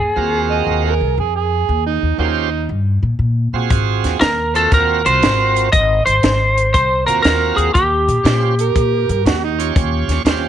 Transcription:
0.00 0.15 D#2 medium
0.00 1.14 G#4 medium
0.16 0.63 D#2 medium
0.16 0.94 C4 medium
0.16 0.94 F4 medium
0.16 0.94 F#4 medium
0.16 0.95 A#4 medium
0.51 0.83 D#5 medium
0.67 0.98 D#2 medium
0.85 1.17 A#4 medium
1.01 1.16 C2 medium
1.18 1.64 F2 medium
1.18 1.35 G#4 medium
1.36 1.85 G#4 medium
1.69 2.00 D#2 medium
1.86 2.18 D#4 medium
2.02 2.18 D#2 medium
2.18 2.65 D#2 medium
2.18 2.27 F#3 medium
2.18 2.26 A#3 medium
2.18 2.49 C#4 medium
2.18 2.68 D#4 medium
2.18 2.50 F4 medium
2.18 2.50 G4 medium
2.18 2.50 C5 medium
2.69 3.00 G2 medium
3.03 3.18 A#2 medium
3.19 3.51 A#2 medium
3.53 3.69 A#2 medium
3.53 4.18 C4 medium
3.53 4.18 F4 medium
3.53 4.19 F#4 medium
3.53 4.19 G#4 medium
3.70 4.01 G#1 medium
3.70 kick loud
3.70 closed hi-hat medium
4.04 4.20 D#2 medium
4.04 snare soft
4.04 closed hi-hat medium
4.21 4.68 D#2 medium
4.21 4.56 A#4 medium
4.21 snare loud
4.21 closed hi-hat medium
4.54 5.02 C4 medium
4.54 5.02 F4 medium
4.54 5.02 F#4 medium
4.54 4.71 A4 medium
4.54 5.03 A#4 medium
4.54 closed hi-hat medium
4.72 5.03 D#2 medium
4.72 5.08 A#4 medium
4.72 kick loud
4.72 closed hi-hat medium
5.04 5.21 C2 medium
5.04 5.69 C4 medium
5.04 5.69 F4 medium
5.04 5.70 F#4 medium
5.04 5.70 A#4 medium
5.04 5.69 C5 loud
5.04 closed hi-hat medium
5.22 5.69 G#1 medium
5.22 snare loud
5.22 closed hi-hat medium
5.57 closed hi-hat medium
5.72 6.04 G#1 medium
5.72 6.05 D#5 loud
5.72 kick loud
5.72 closed hi-hat medium
6.06 6.22 G#1 medium
6.06 6.73 C5 loud
6.06 closed hi-hat medium
6.23 6.70 G#1 medium
6.23 snare loud
6.23 closed hi-hat medium
6.58 closed hi-hat medium
6.74 7.05 C2 medium
6.74 7.06 C5 medium
6.74 kick loud
6.74 closed hi-hat medium
7.07 7.23 D#2 medium
7.07 7.71 C4 medium
7.07 7.71 F4 medium
7.07 7.72 F#4 medium
7.07 7.21 A#4 medium
7.07 7.72 A#4 medium
7.07 closed hi-hat medium
7.22 7.55 D#2 medium
7.22 7.58 A#4 medium
7.22 snare loud
7.22 closed hi-hat medium
7.57 7.73 D#2 medium
7.57 7.74 G#4 medium
7.57 closed hi-hat medium
7.74 8.06 D#2 medium
7.74 9.21 G4 medium
7.74 kick loud
7.74 closed hi-hat medium
8.08 8.23 A#2 medium
8.08 closed hi-hat medium
8.24 8.71 A#2 medium
8.24 8.55 C#4 medium
8.24 8.55 F4 medium
8.24 8.55 G4 medium
8.24 8.55 C5 medium
8.24 snare loud
8.24 closed hi-hat medium
8.59 9.08 A#4 loud
8.59 closed hi-hat medium
8.76 9.06 A#2 medium
8.76 kick loud
8.76 closed hi-hat medium
9.09 9.24 G2 medium
9.09 9.25 A#4 medium
9.09 closed hi-hat medium
9.25 9.72 D#2 medium
9.25 9.42 F#4 medium
9.25 snare loud
9.25 closed hi-hat medium
9.44 9.70 D#4 medium
9.58 10.22 C#4 medium
9.58 10.22 F4 medium
9.58 10.23 G4 medium
9.58 10.23 C#5 medium
9.58 closed hi-hat medium
9.76 10.07 D#2 medium
9.76 kick loud
9.76 closed hi-hat medium
10.08 10.24 D#2 medium
10.08 snare soft
10.08 closed hi-hat medium
10.25 10.48 D#2 medium
10.25 10.48 C#4 medium
10.25 10.48 F4 medium
10.25 10.48 G4 medium
10.25 10.48 C5 medium
10.25 snare loud
10.25 closed hi-hat medium

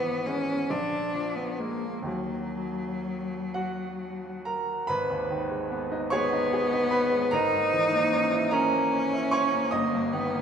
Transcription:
0.00 0.66 G#1 medium
0.00 0.53 E3 soft
0.00 0.28 B3 medium
0.26 0.66 G#3 soft
0.26 0.66 B3 soft
0.26 0.71 C#4 medium
0.70 2.02 A#1 medium
0.70 1.37 D4 medium
1.15 1.87 F3 soft
1.35 1.61 B3 medium
1.59 2.03 G#3 soft
1.59 2.06 A#3 medium
1.59 2.03 A#3 soft
2.02 4.83 D#2 soft
2.02 4.83 D#3 soft
2.02 4.84 F#3 soft
2.06 4.42 F#3 medium
2.06 4.85 A#3 soft
3.54 4.42 F#4 medium
3.54 4.46 F#5 medium
4.45 4.86 A#4 medium
4.45 4.88 A#5 medium
4.87 7.29 G#1 medium
4.87 6.09 B4 medium
4.87 6.12 B5 loud
5.10 5.42 D#2 medium
5.31 5.63 D#3 medium
5.51 5.84 G#3 medium
5.71 6.04 B3 medium
5.92 6.25 D#4 medium
6.10 7.35 B3 medium
6.10 6.45 G#4 medium
6.10 6.88 C#5 medium
6.10 6.92 C#6 loud
6.33 6.65 D#4 medium
6.53 6.85 G#4 medium
6.73 7.05 D#4 medium
6.91 7.24 B3 medium
6.91 7.29 B4 medium
6.91 7.31 B5 medium
7.12 7.32 G#3 medium
7.31 9.68 G#1 medium
7.31 8.54 D#4 medium
7.31 8.48 A#4 medium
7.31 8.49 A#5 loud
7.53 7.85 G#2 soft
7.73 8.04 E3 medium
7.92 8.24 A#3 medium
8.12 8.44 C#4 medium
8.31 8.64 E4 medium
8.51 8.85 C#4 medium
8.51 9.75 C#4 medium
8.51 9.28 A#4 medium
8.51 9.32 A#5 loud
8.73 9.05 A#3 medium
8.92 9.24 C#4 medium
9.13 9.45 E4 medium
9.31 9.65 C#4 medium
9.31 9.69 C#5 medium
9.31 9.72 C#6 loud
9.52 9.72 A#3 medium
9.71 10.42 G1 medium
9.71 10.14 A#3 medium
9.71 10.42 D#5 medium
9.71 10.42 D#6 loud
9.92 10.24 G2 soft
10.12 10.42 D#3 medium
10.12 10.42 B3 medium
10.32 10.42 A#3 medium

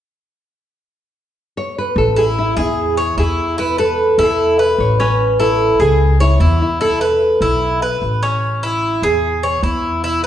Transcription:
1.57 1.77 C#5 loud
1.78 1.96 B4 medium
1.96 2.53 A1 loud
1.96 2.16 A4 medium
2.16 2.56 E4 medium
2.16 2.23 G#4 medium
2.39 2.58 E4 medium
2.57 3.13 E2 medium
2.57 3.20 E4 medium
2.57 2.96 G#4 medium
2.97 3.17 C#5 medium
3.17 4.12 E2 medium
3.17 3.57 E4 medium
3.17 3.59 G#4 medium
3.58 3.77 E4 medium
3.58 3.79 B4 medium
3.78 4.18 A4 medium
3.78 4.17 B4 medium
4.18 4.75 E2 medium
4.18 4.58 E4 medium
4.18 4.59 A4 medium
4.59 4.75 G#4 medium
4.59 4.98 B4 medium
4.78 5.74 A1 medium
4.78 4.98 C#5 medium
5.00 5.39 C#4 medium
5.00 5.40 B4 medium
5.40 5.79 E4 medium
5.40 5.81 A4 medium
5.79 6.36 C#2 medium
5.79 6.19 G#4 medium
5.79 6.18 G#4 medium
6.20 6.61 E4 medium
6.20 6.40 C#5 medium
6.40 7.35 E2 medium
6.40 6.79 E4 medium
6.62 6.67 E4 medium
6.81 7.00 E4 medium
6.81 7.98 A4 medium
7.01 7.40 B4 medium
7.41 7.98 B1 medium
7.41 7.81 E4 medium
7.82 8.21 B4 medium
8.02 8.97 A1 medium
8.23 8.62 C#4 medium
8.63 9.02 E4 medium
9.02 9.59 E2 medium
9.02 9.42 G#4 medium
9.43 9.63 C#5 medium
9.63 10.27 E2 medium
9.63 10.03 E4 medium
10.04 10.23 E4 medium

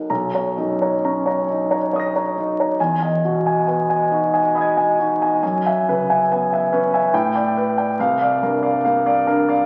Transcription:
0.00 0.12 B3 soft
0.00 0.12 D#4 soft
0.00 0.12 A#4 soft
0.00 0.12 D#5 soft
0.00 0.12 F#5 soft
0.10 2.74 B1 soft
0.10 0.33 A#5 soft
0.35 0.54 C#5 soft
0.35 0.54 A#5 soft
0.57 1.29 F#2 soft
0.57 0.93 D#4 soft
0.82 1.01 C#5 soft
0.82 1.01 A#5 soft
1.05 1.75 C#4 soft
1.05 1.26 A#5 soft
1.26 1.45 C#5 soft
1.26 1.46 A#5 soft
1.50 2.20 D#4 soft
1.71 1.90 C#5 soft
1.71 1.91 A#5 soft
1.93 2.14 C#5 soft
1.93 2.75 C#6 soft
1.93 2.76 D#6 soft
2.00 2.78 A#6 soft
2.16 2.34 C#5 soft
2.16 2.34 A#5 soft
2.38 2.71 D#4 soft
2.60 2.78 C#5 soft
2.60 2.78 A#5 soft
2.80 5.39 E2 soft
2.80 3.01 G#5 soft
3.02 3.21 D#5 soft
3.02 3.21 G#5 soft
3.25 3.94 B2 soft
3.25 3.59 F#4 soft
3.46 3.65 D#5 soft
3.46 3.65 G#5 soft
3.67 4.37 B3 soft
3.67 3.88 G#5 soft
3.90 4.09 D#5 soft
3.90 4.09 G#5 soft
4.12 4.81 D#4 soft
4.12 4.46 F#4 soft
4.34 4.53 D#5 soft
4.34 4.53 G#5 soft
4.55 4.76 D#5 soft
4.55 5.38 B5 soft
4.55 5.40 D#6 soft
4.61 5.41 G#6 soft
4.77 4.96 D#5 soft
4.77 4.96 G#5 soft
5.00 5.43 D#4 soft
5.00 5.34 F#4 soft
5.22 5.41 D#5 soft
5.22 5.41 G#5 soft
5.43 7.09 F#2 soft
5.43 5.65 G#5 soft
5.66 5.85 E5 soft
5.66 5.85 G#5 soft
5.88 6.55 C#3 soft
5.88 6.21 B4 soft
6.10 6.27 E5 soft
6.10 6.28 G#5 soft
6.31 6.97 B3 soft
6.31 6.52 G#5 soft
6.53 6.70 E5 soft
6.53 6.70 G#5 soft
6.73 7.14 C#4 soft
6.73 7.05 B4 soft
6.94 7.12 E5 soft
6.94 7.12 G#5 soft
7.14 7.96 A2 medium
7.14 7.34 G5 medium
7.35 7.54 D5 soft
7.35 7.54 G5 soft
7.57 7.90 B4 soft
7.78 7.96 D5 soft
7.78 7.96 G5 soft
7.99 9.65 C2 medium
7.99 8.20 F5 medium
8.22 8.40 D5 soft
8.22 8.40 F5 soft
8.42 9.10 G2 soft
8.42 8.76 A#4 soft
8.63 8.82 D5 soft
8.63 8.82 F5 soft
8.85 9.53 A#3 soft
8.85 9.05 F5 medium
9.06 9.25 D5 soft
9.06 9.25 F5 soft
9.27 9.66 D4 soft
9.27 9.61 A#4 medium
9.49 9.66 D5 soft
9.49 9.66 F5 medium

